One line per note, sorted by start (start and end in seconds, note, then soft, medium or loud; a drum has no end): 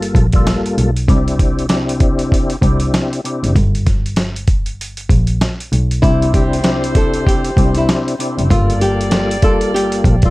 0.00 0.12 G1 loud
0.00 0.26 G2 medium
0.00 0.26 G3 medium
0.00 0.26 A#3 medium
0.00 0.27 F4 medium
0.00 0.27 A4 loud
0.00 closed hi-hat medium
0.15 0.40 A#1 loud
0.15 kick loud
0.15 closed hi-hat medium
0.32 0.90 G2 medium
0.32 0.90 G3 medium
0.32 0.90 A#3 medium
0.32 0.91 F4 medium
0.32 0.91 A4 loud
0.32 kick loud
0.32 closed hi-hat medium
0.47 snare loud
0.47 closed hi-hat medium
0.66 closed hi-hat medium
0.78 1.03 B1 medium
0.78 closed hi-hat medium
0.96 closed hi-hat medium
1.07 2.59 C2 loud
1.07 1.66 C3 medium
1.07 1.66 C4 medium
1.07 1.66 D4 medium
1.07 1.67 E4 medium
1.07 1.67 G4 loud
1.07 kick loud
1.07 closed hi-hat medium
1.28 closed hi-hat medium
1.39 kick medium
1.39 closed hi-hat medium
1.59 closed hi-hat medium
1.68 2.56 C3 loud
1.68 2.56 C4 medium
1.68 2.56 D4 medium
1.68 2.57 E4 medium
1.68 2.57 G4 loud
1.68 snare loud
1.68 closed hi-hat medium
1.89 closed hi-hat medium
2.00 kick loud
2.00 closed hi-hat medium
2.19 closed hi-hat medium
2.32 kick medium
2.32 closed hi-hat medium
2.50 closed hi-hat medium
2.62 2.88 C2 medium
2.62 3.20 C3 loud
2.62 3.20 C4 medium
2.62 3.21 D4 medium
2.62 3.21 E4 medium
2.62 3.21 G4 loud
2.62 kick medium
2.62 closed hi-hat medium
2.80 closed hi-hat medium
2.94 snare loud
2.94 closed hi-hat medium
3.13 closed hi-hat medium
3.24 3.53 C3 medium
3.24 3.54 C4 medium
3.24 3.54 D4 medium
3.24 3.54 E4 medium
3.24 3.54 G4 medium
3.24 closed hi-hat medium
3.43 3.53 F#1 medium
3.43 closed hi-hat medium
3.56 5.06 G1 loud
3.56 kick loud
3.56 closed hi-hat loud
3.75 closed hi-hat medium
3.86 kick loud
3.86 snare soft
3.86 closed hi-hat medium
4.06 closed hi-hat medium
4.16 snare loud
4.16 closed hi-hat medium
4.36 closed hi-hat medium
4.48 kick loud
4.48 closed hi-hat medium
4.66 closed hi-hat medium
4.81 closed hi-hat medium
4.97 closed hi-hat medium
5.09 5.35 A#1 loud
5.09 kick loud
5.09 closed hi-hat medium
5.27 closed hi-hat medium
5.41 snare loud
5.41 closed hi-hat medium
5.60 closed hi-hat medium
5.72 5.97 B1 medium
5.72 closed hi-hat medium
5.91 closed hi-hat medium
6.02 7.54 C2 loud
6.02 6.60 C3 medium
6.02 8.15 G3 medium
6.02 6.61 C4 medium
6.02 6.61 D4 medium
6.02 6.30 E4 loud
6.02 8.15 E4 medium
6.02 6.61 E4 medium
6.02 6.62 G4 loud
6.02 8.15 C5 loud
6.02 kick loud
6.02 closed hi-hat loud
6.22 closed hi-hat medium
6.34 6.92 G4 medium
6.34 kick loud
6.34 closed hi-hat medium
6.53 closed hi-hat medium
6.63 7.50 C3 loud
6.63 7.51 C4 medium
6.63 7.51 D4 medium
6.63 7.51 E4 medium
6.63 7.52 G4 loud
6.63 snare loud
6.63 closed hi-hat medium
6.84 closed hi-hat medium
6.95 7.24 A4 medium
6.95 kick loud
6.95 closed hi-hat medium
7.14 closed hi-hat medium
7.27 7.73 G4 medium
7.27 kick medium
7.27 closed hi-hat loud
7.44 closed hi-hat medium
7.57 7.82 C2 loud
7.57 8.15 C3 loud
7.57 8.15 C4 medium
7.57 8.15 D4 medium
7.57 8.16 E4 medium
7.57 8.16 G4 loud
7.57 kick loud
7.57 closed hi-hat medium
7.75 7.88 E4 medium
7.75 closed hi-hat medium
7.89 snare loud
7.89 closed hi-hat medium
8.08 closed hi-hat medium
8.18 8.48 C3 medium
8.18 8.48 C4 medium
8.18 8.49 D4 medium
8.18 8.49 E4 medium
8.18 8.49 G4 medium
8.18 closed hi-hat medium
8.38 8.48 F#1 medium
8.38 closed hi-hat medium
8.49 10.01 G1 loud
8.49 9.37 G2 loud
8.49 9.37 G3 medium
8.49 10.30 A#3 loud
8.49 9.37 A#3 medium
8.49 8.78 F4 loud
8.49 9.37 F4 medium
8.49 10.30 G4 medium
8.49 9.38 A4 loud
8.49 10.30 D5 loud
8.49 kick loud
8.49 closed hi-hat loud
8.70 closed hi-hat medium
8.81 9.40 G4 medium
8.81 closed hi-hat medium
9.01 closed hi-hat medium
9.11 snare loud
9.11 closed hi-hat medium
9.31 closed hi-hat medium
9.42 10.15 G2 medium
9.42 10.16 G3 medium
9.42 10.16 A#3 medium
9.42 10.16 F4 medium
9.42 9.72 A4 medium
9.42 10.17 A4 loud
9.42 kick loud
9.42 closed hi-hat medium
9.61 closed hi-hat medium
9.74 10.20 G4 medium
9.74 closed hi-hat medium
9.92 closed hi-hat medium
10.04 10.30 A#1 loud
10.04 kick loud
10.04 closed hi-hat medium
10.22 10.30 G2 medium
10.22 10.30 G3 medium
10.22 10.30 A#3 medium
10.22 10.30 F4 medium
10.22 10.30 A4 loud
10.22 kick loud
10.22 closed hi-hat medium